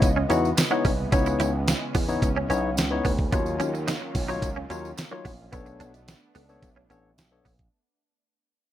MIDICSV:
0, 0, Header, 1, 7, 480
1, 0, Start_track
1, 0, Tempo, 550459
1, 978, Time_signature, 4, 2, 24, 8
1, 7606, End_track
2, 0, Start_track
2, 0, Title_t, "Tine electric piano"
2, 0, Program_c, 0, 4
2, 254, Note_on_c, 0, 59, 89
2, 257, Note_on_c, 0, 63, 84
2, 259, Note_on_c, 0, 64, 82
2, 262, Note_on_c, 0, 66, 103
2, 427, Note_off_c, 0, 59, 0
2, 428, Note_off_c, 0, 63, 0
2, 429, Note_off_c, 0, 64, 0
2, 431, Note_off_c, 0, 66, 0
2, 615, Note_on_c, 0, 59, 85
2, 617, Note_on_c, 0, 63, 82
2, 618, Note_on_c, 0, 64, 79
2, 620, Note_on_c, 0, 73, 96
2, 787, Note_off_c, 0, 59, 0
2, 788, Note_off_c, 0, 63, 0
2, 789, Note_off_c, 0, 64, 0
2, 790, Note_off_c, 0, 73, 0
2, 976, Note_on_c, 0, 59, 89
2, 977, Note_on_c, 0, 63, 76
2, 981, Note_on_c, 0, 64, 79
2, 984, Note_on_c, 0, 73, 97
2, 1319, Note_off_c, 0, 59, 0
2, 1319, Note_off_c, 0, 63, 0
2, 1321, Note_off_c, 0, 64, 0
2, 1322, Note_off_c, 0, 73, 0
2, 1696, Note_on_c, 0, 64, 86
2, 1702, Note_on_c, 0, 73, 94
2, 1754, Note_off_c, 0, 64, 0
2, 1757, Note_off_c, 0, 73, 0
2, 1817, Note_on_c, 0, 59, 83
2, 1819, Note_on_c, 0, 63, 83
2, 1821, Note_on_c, 0, 64, 78
2, 1824, Note_on_c, 0, 73, 96
2, 1988, Note_off_c, 0, 59, 0
2, 1989, Note_off_c, 0, 63, 0
2, 1991, Note_off_c, 0, 64, 0
2, 1992, Note_off_c, 0, 73, 0
2, 2176, Note_on_c, 0, 59, 90
2, 2178, Note_on_c, 0, 63, 85
2, 2180, Note_on_c, 0, 64, 79
2, 2183, Note_on_c, 0, 73, 104
2, 2348, Note_off_c, 0, 59, 0
2, 2349, Note_off_c, 0, 63, 0
2, 2350, Note_off_c, 0, 64, 0
2, 2351, Note_off_c, 0, 73, 0
2, 2535, Note_on_c, 0, 59, 89
2, 2538, Note_on_c, 0, 63, 81
2, 2540, Note_on_c, 0, 64, 79
2, 2543, Note_on_c, 0, 73, 98
2, 2707, Note_off_c, 0, 59, 0
2, 2709, Note_off_c, 0, 63, 0
2, 2710, Note_off_c, 0, 64, 0
2, 2711, Note_off_c, 0, 73, 0
2, 2894, Note_on_c, 0, 54, 85
2, 2897, Note_on_c, 0, 63, 80
2, 2900, Note_on_c, 0, 65, 86
2, 2901, Note_on_c, 0, 73, 92
2, 3237, Note_off_c, 0, 54, 0
2, 3239, Note_off_c, 0, 63, 0
2, 3241, Note_off_c, 0, 65, 0
2, 3241, Note_off_c, 0, 73, 0
2, 3614, Note_on_c, 0, 65, 82
2, 3623, Note_on_c, 0, 73, 95
2, 3673, Note_off_c, 0, 65, 0
2, 3677, Note_off_c, 0, 73, 0
2, 3737, Note_on_c, 0, 54, 87
2, 3739, Note_on_c, 0, 63, 81
2, 3742, Note_on_c, 0, 65, 79
2, 3745, Note_on_c, 0, 73, 99
2, 3908, Note_off_c, 0, 54, 0
2, 3909, Note_off_c, 0, 63, 0
2, 3911, Note_off_c, 0, 65, 0
2, 3912, Note_off_c, 0, 73, 0
2, 4098, Note_on_c, 0, 54, 96
2, 4100, Note_on_c, 0, 63, 79
2, 4102, Note_on_c, 0, 65, 85
2, 4105, Note_on_c, 0, 73, 100
2, 4269, Note_off_c, 0, 54, 0
2, 4270, Note_off_c, 0, 63, 0
2, 4271, Note_off_c, 0, 65, 0
2, 4272, Note_off_c, 0, 73, 0
2, 4455, Note_on_c, 0, 54, 88
2, 4458, Note_on_c, 0, 63, 79
2, 4461, Note_on_c, 0, 65, 86
2, 4462, Note_on_c, 0, 73, 101
2, 4627, Note_off_c, 0, 54, 0
2, 4629, Note_off_c, 0, 63, 0
2, 4630, Note_off_c, 0, 65, 0
2, 4631, Note_off_c, 0, 73, 0
2, 4813, Note_on_c, 0, 59, 84
2, 4815, Note_on_c, 0, 62, 82
2, 4817, Note_on_c, 0, 69, 79
2, 4820, Note_on_c, 0, 73, 94
2, 5157, Note_off_c, 0, 59, 0
2, 5158, Note_off_c, 0, 62, 0
2, 5159, Note_off_c, 0, 69, 0
2, 5160, Note_off_c, 0, 73, 0
2, 5535, Note_on_c, 0, 69, 82
2, 5543, Note_on_c, 0, 71, 95
2, 5593, Note_off_c, 0, 69, 0
2, 5597, Note_off_c, 0, 71, 0
2, 5658, Note_on_c, 0, 59, 85
2, 5660, Note_on_c, 0, 62, 84
2, 5663, Note_on_c, 0, 69, 81
2, 5665, Note_on_c, 0, 73, 92
2, 5829, Note_off_c, 0, 59, 0
2, 5830, Note_off_c, 0, 62, 0
2, 5831, Note_off_c, 0, 69, 0
2, 5832, Note_off_c, 0, 73, 0
2, 6018, Note_on_c, 0, 59, 85
2, 6020, Note_on_c, 0, 62, 80
2, 6022, Note_on_c, 0, 69, 85
2, 6024, Note_on_c, 0, 73, 99
2, 6189, Note_off_c, 0, 59, 0
2, 6190, Note_off_c, 0, 62, 0
2, 6191, Note_off_c, 0, 69, 0
2, 6192, Note_off_c, 0, 73, 0
2, 6379, Note_on_c, 0, 59, 90
2, 6382, Note_on_c, 0, 62, 74
2, 6384, Note_on_c, 0, 69, 82
2, 6386, Note_on_c, 0, 73, 89
2, 6549, Note_off_c, 0, 59, 0
2, 6551, Note_off_c, 0, 62, 0
2, 6552, Note_off_c, 0, 69, 0
2, 6553, Note_off_c, 0, 73, 0
2, 7606, End_track
3, 0, Start_track
3, 0, Title_t, "Clean electric guitar"
3, 0, Program_c, 1, 27
3, 142, Note_on_c, 1, 61, 72
3, 212, Note_off_c, 1, 61, 0
3, 263, Note_on_c, 1, 61, 76
3, 333, Note_off_c, 1, 61, 0
3, 620, Note_on_c, 1, 59, 80
3, 691, Note_off_c, 1, 59, 0
3, 741, Note_on_c, 1, 61, 73
3, 811, Note_off_c, 1, 61, 0
3, 981, Note_on_c, 1, 61, 84
3, 1051, Note_off_c, 1, 61, 0
3, 1220, Note_on_c, 1, 64, 71
3, 1291, Note_off_c, 1, 64, 0
3, 1699, Note_on_c, 1, 59, 77
3, 1770, Note_off_c, 1, 59, 0
3, 2062, Note_on_c, 1, 61, 73
3, 2132, Note_off_c, 1, 61, 0
3, 2179, Note_on_c, 1, 61, 79
3, 2250, Note_off_c, 1, 61, 0
3, 2658, Note_on_c, 1, 59, 83
3, 2729, Note_off_c, 1, 59, 0
3, 2900, Note_on_c, 1, 59, 88
3, 2971, Note_off_c, 1, 59, 0
3, 3136, Note_on_c, 1, 61, 92
3, 3208, Note_off_c, 1, 61, 0
3, 3379, Note_on_c, 1, 63, 84
3, 3450, Note_off_c, 1, 63, 0
3, 3736, Note_on_c, 1, 63, 80
3, 3808, Note_off_c, 1, 63, 0
3, 3979, Note_on_c, 1, 61, 74
3, 4050, Note_off_c, 1, 61, 0
3, 4099, Note_on_c, 1, 61, 74
3, 4170, Note_off_c, 1, 61, 0
3, 4461, Note_on_c, 1, 58, 82
3, 4531, Note_off_c, 1, 58, 0
3, 4577, Note_on_c, 1, 59, 77
3, 4648, Note_off_c, 1, 59, 0
3, 4818, Note_on_c, 1, 59, 85
3, 4889, Note_off_c, 1, 59, 0
3, 5058, Note_on_c, 1, 62, 74
3, 5129, Note_off_c, 1, 62, 0
3, 5537, Note_on_c, 1, 59, 82
3, 5608, Note_off_c, 1, 59, 0
3, 5897, Note_on_c, 1, 61, 78
3, 5969, Note_off_c, 1, 61, 0
3, 6016, Note_on_c, 1, 61, 77
3, 6088, Note_off_c, 1, 61, 0
3, 6497, Note_on_c, 1, 59, 75
3, 6568, Note_off_c, 1, 59, 0
3, 7606, End_track
4, 0, Start_track
4, 0, Title_t, "Analog synth pad"
4, 0, Program_c, 2, 89
4, 0, Note_on_c, 2, 49, 79
4, 0, Note_on_c, 2, 52, 88
4, 0, Note_on_c, 2, 56, 72
4, 0, Note_on_c, 2, 59, 75
4, 0, Note_on_c, 2, 75, 76
4, 961, Note_off_c, 2, 75, 0
4, 982, Note_on_c, 2, 61, 77
4, 2864, Note_off_c, 2, 59, 0
4, 2865, Note_off_c, 2, 49, 0
4, 2865, Note_off_c, 2, 52, 0
4, 2866, Note_off_c, 2, 56, 0
4, 2881, Note_off_c, 2, 61, 0
4, 2899, Note_on_c, 2, 58, 75
4, 2899, Note_on_c, 2, 65, 69
4, 2900, Note_on_c, 2, 51, 80
4, 2901, Note_on_c, 2, 54, 85
4, 2901, Note_on_c, 2, 61, 71
4, 4800, Note_off_c, 2, 51, 0
4, 4800, Note_off_c, 2, 54, 0
4, 4800, Note_off_c, 2, 58, 0
4, 4800, Note_off_c, 2, 61, 0
4, 4800, Note_off_c, 2, 65, 0
4, 4824, Note_on_c, 2, 57, 79
4, 4824, Note_on_c, 2, 59, 75
4, 4824, Note_on_c, 2, 62, 90
4, 6722, Note_off_c, 2, 57, 0
4, 6722, Note_off_c, 2, 59, 0
4, 6722, Note_off_c, 2, 62, 0
4, 7606, End_track
5, 0, Start_track
5, 0, Title_t, "Slap bass"
5, 0, Program_c, 3, 36
5, 16, Note_on_c, 3, 37, 89
5, 208, Note_off_c, 3, 37, 0
5, 260, Note_on_c, 3, 40, 92
5, 451, Note_off_c, 3, 40, 0
5, 738, Note_on_c, 3, 36, 99
5, 930, Note_off_c, 3, 36, 0
5, 980, Note_on_c, 3, 37, 102
5, 1170, Note_off_c, 3, 37, 0
5, 1219, Note_on_c, 3, 37, 101
5, 1505, Note_off_c, 3, 37, 0
5, 1699, Note_on_c, 3, 40, 99
5, 1890, Note_off_c, 3, 40, 0
5, 1937, Note_on_c, 3, 37, 96
5, 2129, Note_off_c, 3, 37, 0
5, 2178, Note_on_c, 3, 35, 95
5, 2418, Note_off_c, 3, 35, 0
5, 2418, Note_on_c, 3, 37, 99
5, 2609, Note_off_c, 3, 37, 0
5, 2658, Note_on_c, 3, 38, 94
5, 2849, Note_off_c, 3, 38, 0
5, 2898, Note_on_c, 3, 39, 107
5, 3089, Note_off_c, 3, 39, 0
5, 3136, Note_on_c, 3, 39, 98
5, 3424, Note_off_c, 3, 39, 0
5, 3619, Note_on_c, 3, 35, 103
5, 3810, Note_off_c, 3, 35, 0
5, 3856, Note_on_c, 3, 37, 105
5, 4048, Note_off_c, 3, 37, 0
5, 4098, Note_on_c, 3, 39, 95
5, 4290, Note_off_c, 3, 39, 0
5, 4579, Note_on_c, 3, 34, 98
5, 4770, Note_off_c, 3, 34, 0
5, 4821, Note_on_c, 3, 35, 109
5, 5011, Note_off_c, 3, 35, 0
5, 5059, Note_on_c, 3, 35, 102
5, 5345, Note_off_c, 3, 35, 0
5, 5539, Note_on_c, 3, 37, 82
5, 5730, Note_off_c, 3, 37, 0
5, 5777, Note_on_c, 3, 35, 88
5, 5968, Note_off_c, 3, 35, 0
5, 6017, Note_on_c, 3, 33, 85
5, 6209, Note_off_c, 3, 33, 0
5, 6258, Note_on_c, 3, 35, 96
5, 6449, Note_off_c, 3, 35, 0
5, 6500, Note_on_c, 3, 34, 96
5, 6691, Note_off_c, 3, 34, 0
5, 7606, End_track
6, 0, Start_track
6, 0, Title_t, "Muted clean electric guitar strokes"
6, 22, Note_on_c, 9, 29, 44
6, 109, Note_off_c, 9, 29, 0
6, 500, Note_on_c, 9, 29, 47
6, 587, Note_off_c, 9, 29, 0
6, 1103, Note_on_c, 9, 29, 46
6, 1190, Note_off_c, 9, 29, 0
6, 1940, Note_on_c, 9, 29, 43
6, 2027, Note_off_c, 9, 29, 0
6, 3258, Note_on_c, 9, 29, 44
6, 3346, Note_off_c, 9, 29, 0
6, 3498, Note_on_c, 9, 29, 49
6, 3585, Note_off_c, 9, 29, 0
6, 3859, Note_on_c, 9, 29, 44
6, 3946, Note_off_c, 9, 29, 0
6, 4340, Note_on_c, 9, 29, 49
6, 4427, Note_off_c, 9, 29, 0
6, 4936, Note_on_c, 9, 29, 46
6, 5024, Note_off_c, 9, 29, 0
6, 5777, Note_on_c, 9, 29, 42
6, 5864, Note_off_c, 9, 29, 0
6, 7606, End_track
7, 0, Start_track
7, 0, Title_t, "Drums"
7, 17, Note_on_c, 9, 36, 116
7, 20, Note_on_c, 9, 42, 98
7, 31, Note_on_c, 9, 54, 55
7, 104, Note_off_c, 9, 36, 0
7, 107, Note_off_c, 9, 42, 0
7, 118, Note_off_c, 9, 54, 0
7, 259, Note_on_c, 9, 42, 64
7, 273, Note_on_c, 9, 54, 55
7, 346, Note_off_c, 9, 42, 0
7, 360, Note_off_c, 9, 54, 0
7, 392, Note_on_c, 9, 54, 33
7, 479, Note_off_c, 9, 54, 0
7, 500, Note_on_c, 9, 54, 100
7, 503, Note_on_c, 9, 42, 98
7, 507, Note_on_c, 9, 38, 110
7, 588, Note_off_c, 9, 54, 0
7, 590, Note_off_c, 9, 42, 0
7, 594, Note_off_c, 9, 38, 0
7, 739, Note_on_c, 9, 36, 90
7, 742, Note_on_c, 9, 46, 67
7, 745, Note_on_c, 9, 54, 48
7, 826, Note_off_c, 9, 36, 0
7, 829, Note_off_c, 9, 46, 0
7, 832, Note_off_c, 9, 54, 0
7, 979, Note_on_c, 9, 42, 92
7, 980, Note_on_c, 9, 36, 127
7, 982, Note_on_c, 9, 54, 46
7, 1066, Note_off_c, 9, 42, 0
7, 1067, Note_off_c, 9, 36, 0
7, 1069, Note_off_c, 9, 54, 0
7, 1099, Note_on_c, 9, 54, 38
7, 1187, Note_off_c, 9, 54, 0
7, 1218, Note_on_c, 9, 42, 82
7, 1227, Note_on_c, 9, 54, 54
7, 1306, Note_off_c, 9, 42, 0
7, 1314, Note_off_c, 9, 54, 0
7, 1461, Note_on_c, 9, 42, 85
7, 1462, Note_on_c, 9, 54, 83
7, 1466, Note_on_c, 9, 38, 122
7, 1548, Note_off_c, 9, 42, 0
7, 1549, Note_off_c, 9, 54, 0
7, 1553, Note_off_c, 9, 38, 0
7, 1698, Note_on_c, 9, 46, 84
7, 1698, Note_on_c, 9, 54, 58
7, 1699, Note_on_c, 9, 36, 107
7, 1785, Note_off_c, 9, 46, 0
7, 1785, Note_off_c, 9, 54, 0
7, 1786, Note_off_c, 9, 36, 0
7, 1819, Note_on_c, 9, 54, 34
7, 1906, Note_off_c, 9, 54, 0
7, 1937, Note_on_c, 9, 36, 111
7, 1940, Note_on_c, 9, 42, 100
7, 1948, Note_on_c, 9, 54, 58
7, 2024, Note_off_c, 9, 36, 0
7, 2027, Note_off_c, 9, 42, 0
7, 2035, Note_off_c, 9, 54, 0
7, 2180, Note_on_c, 9, 42, 64
7, 2191, Note_on_c, 9, 54, 53
7, 2267, Note_off_c, 9, 42, 0
7, 2278, Note_off_c, 9, 54, 0
7, 2417, Note_on_c, 9, 54, 93
7, 2425, Note_on_c, 9, 42, 96
7, 2429, Note_on_c, 9, 38, 118
7, 2504, Note_off_c, 9, 54, 0
7, 2512, Note_off_c, 9, 42, 0
7, 2516, Note_off_c, 9, 38, 0
7, 2658, Note_on_c, 9, 36, 93
7, 2661, Note_on_c, 9, 46, 66
7, 2662, Note_on_c, 9, 54, 49
7, 2746, Note_off_c, 9, 36, 0
7, 2749, Note_off_c, 9, 46, 0
7, 2749, Note_off_c, 9, 54, 0
7, 2778, Note_on_c, 9, 36, 96
7, 2865, Note_off_c, 9, 36, 0
7, 2899, Note_on_c, 9, 36, 124
7, 2899, Note_on_c, 9, 42, 90
7, 2899, Note_on_c, 9, 54, 46
7, 2986, Note_off_c, 9, 36, 0
7, 2986, Note_off_c, 9, 42, 0
7, 2986, Note_off_c, 9, 54, 0
7, 3017, Note_on_c, 9, 54, 37
7, 3104, Note_off_c, 9, 54, 0
7, 3138, Note_on_c, 9, 42, 78
7, 3146, Note_on_c, 9, 54, 50
7, 3225, Note_off_c, 9, 42, 0
7, 3233, Note_off_c, 9, 54, 0
7, 3267, Note_on_c, 9, 54, 36
7, 3354, Note_off_c, 9, 54, 0
7, 3380, Note_on_c, 9, 54, 85
7, 3381, Note_on_c, 9, 42, 85
7, 3386, Note_on_c, 9, 38, 122
7, 3467, Note_off_c, 9, 54, 0
7, 3469, Note_off_c, 9, 42, 0
7, 3473, Note_off_c, 9, 38, 0
7, 3618, Note_on_c, 9, 36, 105
7, 3618, Note_on_c, 9, 46, 80
7, 3619, Note_on_c, 9, 54, 54
7, 3705, Note_off_c, 9, 36, 0
7, 3705, Note_off_c, 9, 46, 0
7, 3707, Note_off_c, 9, 54, 0
7, 3740, Note_on_c, 9, 54, 35
7, 3827, Note_off_c, 9, 54, 0
7, 3856, Note_on_c, 9, 36, 108
7, 3859, Note_on_c, 9, 42, 97
7, 3868, Note_on_c, 9, 54, 53
7, 3943, Note_off_c, 9, 36, 0
7, 3946, Note_off_c, 9, 42, 0
7, 3955, Note_off_c, 9, 54, 0
7, 4099, Note_on_c, 9, 42, 65
7, 4109, Note_on_c, 9, 54, 54
7, 4186, Note_off_c, 9, 42, 0
7, 4197, Note_off_c, 9, 54, 0
7, 4229, Note_on_c, 9, 54, 32
7, 4316, Note_off_c, 9, 54, 0
7, 4338, Note_on_c, 9, 54, 99
7, 4344, Note_on_c, 9, 42, 98
7, 4348, Note_on_c, 9, 38, 118
7, 4425, Note_off_c, 9, 54, 0
7, 4431, Note_off_c, 9, 42, 0
7, 4435, Note_off_c, 9, 38, 0
7, 4579, Note_on_c, 9, 36, 93
7, 4582, Note_on_c, 9, 46, 63
7, 4582, Note_on_c, 9, 54, 47
7, 4666, Note_off_c, 9, 36, 0
7, 4669, Note_off_c, 9, 46, 0
7, 4669, Note_off_c, 9, 54, 0
7, 4818, Note_on_c, 9, 54, 47
7, 4819, Note_on_c, 9, 42, 96
7, 4820, Note_on_c, 9, 36, 126
7, 4905, Note_off_c, 9, 54, 0
7, 4906, Note_off_c, 9, 42, 0
7, 4907, Note_off_c, 9, 36, 0
7, 4937, Note_on_c, 9, 54, 35
7, 5024, Note_off_c, 9, 54, 0
7, 5058, Note_on_c, 9, 42, 83
7, 5064, Note_on_c, 9, 54, 51
7, 5146, Note_off_c, 9, 42, 0
7, 5151, Note_off_c, 9, 54, 0
7, 5181, Note_on_c, 9, 42, 57
7, 5186, Note_on_c, 9, 54, 34
7, 5268, Note_off_c, 9, 42, 0
7, 5273, Note_off_c, 9, 54, 0
7, 5300, Note_on_c, 9, 54, 85
7, 5301, Note_on_c, 9, 42, 79
7, 5306, Note_on_c, 9, 38, 127
7, 5387, Note_off_c, 9, 54, 0
7, 5388, Note_off_c, 9, 42, 0
7, 5393, Note_off_c, 9, 38, 0
7, 5537, Note_on_c, 9, 46, 78
7, 5540, Note_on_c, 9, 54, 58
7, 5624, Note_off_c, 9, 46, 0
7, 5628, Note_off_c, 9, 54, 0
7, 5660, Note_on_c, 9, 54, 33
7, 5747, Note_off_c, 9, 54, 0
7, 5777, Note_on_c, 9, 36, 104
7, 5778, Note_on_c, 9, 42, 96
7, 5789, Note_on_c, 9, 54, 52
7, 5864, Note_off_c, 9, 36, 0
7, 5865, Note_off_c, 9, 42, 0
7, 5876, Note_off_c, 9, 54, 0
7, 6018, Note_on_c, 9, 42, 62
7, 6030, Note_on_c, 9, 54, 57
7, 6105, Note_off_c, 9, 42, 0
7, 6117, Note_off_c, 9, 54, 0
7, 6260, Note_on_c, 9, 54, 91
7, 6263, Note_on_c, 9, 42, 97
7, 6267, Note_on_c, 9, 38, 109
7, 6347, Note_off_c, 9, 54, 0
7, 6350, Note_off_c, 9, 42, 0
7, 6355, Note_off_c, 9, 38, 0
7, 6500, Note_on_c, 9, 36, 91
7, 6503, Note_on_c, 9, 46, 65
7, 6506, Note_on_c, 9, 54, 49
7, 6587, Note_off_c, 9, 36, 0
7, 6590, Note_off_c, 9, 46, 0
7, 6593, Note_off_c, 9, 54, 0
7, 6619, Note_on_c, 9, 36, 100
7, 6620, Note_on_c, 9, 42, 59
7, 6706, Note_off_c, 9, 36, 0
7, 6707, Note_off_c, 9, 42, 0
7, 7606, End_track
0, 0, End_of_file